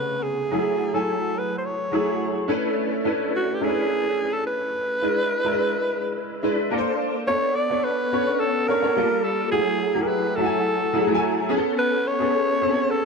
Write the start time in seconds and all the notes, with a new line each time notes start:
Already playing: C3 C#3 A3 B3 G#4 B4
0.23 G#4
0.51 F#3 A3 E4 G#4
0.93 F#3 A3 E4 A4 G#5
1.38 B4
1.58 C5
1.65 C#5
1.92 F#3 A3 E4 G#4
2.48 A3 C#4 D4 E4 B4
3.04 A3 C#4 D4 E4 B4
3.36 F#4
3.54 G4
3.60 A3 C#4 D4 E4 G#4 A#4
3.68 B4
4.33 A4
4.47 B4
5.02 G#3 D4 E4 B4
5.44 G#3 D4 E4 A#4
5.51 B4
6.43 G#3 D4 E4 B4
6.70 A#3 D4 A4 A#4
6.78 C5
7.27 B3 D4 A4 C#5
7.55 D5
7.70 B3 D4 A4 C#5
7.84 B4
8.12 B3 C#4 A4 C#5
8.19 D4
8.39 A4
8.68 B3 D4 A4 A#4 C#5
8.82 B3 D4 A4 C#5
8.96 G3 A#3 F4 A4
9.24 A4
9.51 F#3 A3 E4 G#4
9.94 F#3 A3 E4 G4
10.02 G#4 A#4
10.07 B4
10.36 F#3 A3 E4 F#4 A4
10.45 G#5
10.93 F#3 A3 E4 G#4
11.07 F#3 A3 E4 F#4
11.14 G#5
11.49 B3 C#4 G#4
11.57 A4
11.79 B4
12.07 C#5
12.19 B3 C#4 G#4 A4
12.61 B3 C4 G#4 A4
12.69 C#4
12.90 A4